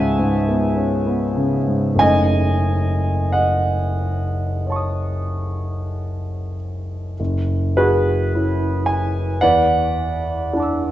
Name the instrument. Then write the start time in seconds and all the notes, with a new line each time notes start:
grand piano
Already playing: C#2 G#2 C#3 B3 C#4 G#4 C#5 E5 F#5 G#5 A5
0.19 G#2
0.48 B3
0.76 C#4
1.06 B3
1.36 C#3
1.68 G#2
1.95 F#1 C#3 A3 C#4 D#4 G#5
2.00 D#5
3.32 D#5 F#5
4.67 C#5 A5
4.72 C#6
4.76 D#6
7.20 F#1
7.77 F#4 G#4 B4
8.35 C#4 E4
8.86 G#5
9.41 E2 B4 D5 F#5
10.53 D4 E4 F#5 A5
10.60 D6 E6